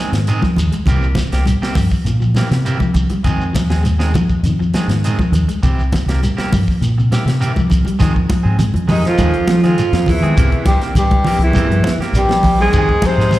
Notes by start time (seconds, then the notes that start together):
Already playing: D#3
0.00 G#3 C4 G#4
0.12 G#2 D#3, muted clean electric guitar stroke, snare, closed hi-hat, shekere
0.27 D#3 G#3 C4 G#4, closed hi-hat, shekere
0.42 F3, muted clean electric guitar stroke, kick, snare, high conga, shekere
0.56 D#2, muted clean electric guitar stroke, closed hi-hat, low conga, shekere
0.72 G#3, muted clean electric guitar stroke, closed hi-hat, shekere
0.86 C2 C3 E3 A#3 C4 G4, kick, closed hi-hat, low conga, shekere
1.03 shekere
1.15 E3, muted clean electric guitar stroke, kick, snare, closed hi-hat, high conga, low conga, shekere
1.32 C2 A#3 C4 G4, snare, closed hi-hat, shekere
1.46 G3, muted clean electric guitar stroke, closed hi-hat, high conga, shekere
1.61 E3 A#3 C4 G4, muted fingered electric bass stroke, snare, shekere
1.75 G2 F3, muted clean electric guitar stroke, kick, open hi-hat, high conga, low conga, shekere
1.91 muted fingered electric bass stroke, kick, shekere
2.05 A#2 E3, closed hi-hat, shekere
2.20 F3, muted clean electric guitar stroke, shekere
2.35 E3 A#3 C4 G4, snare, closed hi-hat, high conga, shekere
2.50 C3 E3, muted clean electric guitar stroke, snare, closed hi-hat, shekere
2.65 E3 A#3 C4 G4, closed hi-hat, shekere
2.80 F3, muted clean electric guitar stroke, kick, high conga, shekere
2.94 C2, muted clean electric guitar stroke, kick, closed hi-hat, low conga, shekere
3.10 G3, muted clean electric guitar stroke, closed hi-hat, high conga, shekere
3.24 F2 D#3 G#3 C4 G#4, kick, closed hi-hat, shekere
3.41 shekere
3.53 F3, muted clean electric guitar stroke, kick, snare, closed hi-hat, high conga, low conga, shekere
3.68 D#2 G#3 C4 G#4, snare, shekere
3.83 G#3, muted clean electric guitar stroke, closed hi-hat, high conga, shekere
3.99 D#3 G#3 C4 G#4, snare, shekere
4.14 F2 F3, muted clean electric guitar stroke, kick, closed hi-hat, high conga, low conga, shekere
4.29 kick, shekere
4.43 F2 D#3, closed hi-hat, shekere
4.59 F3, muted clean electric guitar stroke, shekere
4.73 D#3 G#3 C4 G#4, muted fingered electric bass stroke, snare, closed hi-hat, high conga, shekere
4.88 G#2 D#3, muted clean electric guitar stroke, snare, closed hi-hat
4.92 shekere
5.04 D#3 G#3 C4 G#4, closed hi-hat, shekere
5.19 F3, muted clean electric guitar stroke, kick, high conga, shekere
5.32 D#2, muted clean electric guitar stroke, closed hi-hat, low conga, shekere
5.48 G#3, muted clean electric guitar stroke, closed hi-hat, shekere
5.63 C2 C3 E3 C4 G4, muted clean electric guitar stroke, kick, closed hi-hat, low conga, shekere
5.79 shekere
5.92 E3, muted clean electric guitar stroke, kick, snare, closed hi-hat, high conga, low conga, shekere
6.06 C2 A#3 C4 G4, snare, closed hi-hat, high conga, shekere
6.23 G3, muted clean electric guitar stroke, closed hi-hat, high conga, shekere
6.37 E3 A#3 C4 G4, muted fingered electric bass stroke, snare, shekere
6.52 G2 F3, muted clean electric guitar stroke, kick, open hi-hat, high conga, low conga, shekere
6.68 muted fingered electric bass stroke, kick, shekere
6.81 A#2 E3, closed hi-hat, shekere
6.98 C3, muted clean electric guitar stroke, shekere
7.12 E3 A#3 G4, snare, closed hi-hat, high conga, shekere
7.25 C3 E3, muted clean electric guitar stroke, snare, closed hi-hat, shekere
7.40 E3 A#3 C4 G4, closed hi-hat, shekere
7.54 F3, muted clean electric guitar stroke, kick, high conga, shekere
7.70 C2, muted clean electric guitar stroke, kick, closed hi-hat, low conga, shekere
7.85 G3, muted clean electric guitar stroke, closed hi-hat, high conga, shekere
7.99 F2 D#3 G#3 C4 G#4, kick, snare, closed hi-hat, high conga, low conga, shekere
8.15 muted clean electric guitar stroke, kick
8.29 F3, muted clean electric guitar stroke, kick, snare, closed hi-hat, high conga, shekere
8.43 G#2 G#3 C4 G#4
8.59 G#3, muted clean electric guitar stroke, closed hi-hat, high conga, low conga, shekere
8.74 F2, closed hi-hat, high conga
8.87 D#2 D#3 F3 G#3 D#4 G#4, muted clean electric guitar stroke, open hi-hat, high conga, low conga, shekere
8.92 D#3
9.03 F2 F3, muted clean electric guitar stroke, snare, closed hi-hat
9.09 F4
9.17 D#2 D#3 G#3 C4 G#4, kick, closed hi-hat, high conga, shekere
9.34 F3, muted clean electric guitar stroke, closed hi-hat
9.48 F3, muted clean electric guitar stroke, snare, closed hi-hat, high conga, shekere
9.63 F2 D#3 F3 G#3 C4 F4 G#4, snare, closed hi-hat
9.78 closed hi-hat, high conga, shekere
9.93 F2 F3, muted clean electric guitar stroke, snare, closed hi-hat
10.06 E2 E3 E4, muted clean electric guitar stroke, kick, open hi-hat, low conga, shekere
10.21 D#3 G#3 C4 G#4, closed hi-hat
10.36 C2 C3 E3 A#3 C4 G4, kick, closed hi-hat, high conga, shekere
10.52 muted clean electric guitar stroke, kick, closed hi-hat
10.66 C2 G2 E3 G3 G4, muted clean electric guitar stroke, kick, snare, closed hi-hat, high conga, shekere
10.80 A#3 C4 G4, muted fingered electric bass stroke, snare, closed hi-hat
10.95 C2 G2 G3 G4, muted clean electric guitar stroke, closed hi-hat, high conga, low conga, shekere
10.99 G3
11.11 kick, closed hi-hat, high conga
11.24 E3 F3 A#3 C4 G4, open hi-hat, low conga, shekere
11.38 C2, muted clean electric guitar stroke, closed hi-hat
11.43 E2 E3 E4
11.53 E3 A#3 C4 G4, kick, closed hi-hat, high conga, shekere
11.68 G2 F3, muted clean electric guitar stroke, closed hi-hat
11.84 muted clean electric guitar stroke, snare, closed hi-hat, high conga, shekere
11.98 E3 A#3 C4 G4, muted fingered electric bass stroke, closed hi-hat
12.03 snare
12.13 A#1 G2 G3, closed hi-hat, high conga, shekere
12.18 G4
12.29 F3, muted clean electric guitar stroke, snare, high conga
12.43 A#1, muted clean electric guitar stroke, kick, open hi-hat, low conga, shekere
12.59 G#2 G3 G#3 A#3 C4 G4 G#4
12.73 F2 D#3 G#3 C4 G#4, kick, closed hi-hat, high conga, low conga, shekere
12.89 muted clean electric guitar stroke, kick
13.02 C3 F3, muted clean electric guitar stroke, kick, snare, closed hi-hat, high conga, shekere
13.06 C4 C5
13.18 G#2 G#3 G#4, snare
13.31 G#3, muted clean electric guitar stroke, closed hi-hat, high conga, low conga, shekere